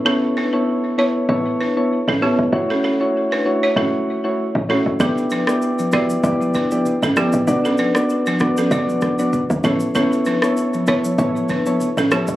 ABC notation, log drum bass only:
X:1
M:4/4
L:1/16
Q:"Swing 16ths" 1/4=97
K:Amix
V:1 name="Log drum bass" clef=bass
A,,,3 z4 z A,,,3 z2 A,,,2 E,,, | F,,,3 z4 z F,,,3 z2 A,,,2 F,,, | E,,,3 z4 z E,,,3 z2 G,,,2 A,,, | B,,,3 z4 z B,,,3 z2 D,, A,,,2- |
A,,,3 z4 z A,,,3 z2 A,,,2 E,,, |]